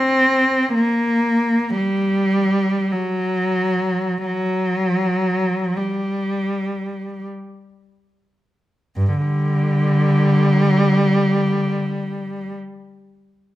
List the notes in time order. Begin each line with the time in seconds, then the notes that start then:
Already playing: C4
0.74 A#3
1.77 G3
2.92 F#3
4.26 F#3
5.77 G3
8.96 G2
9.17 D3 G3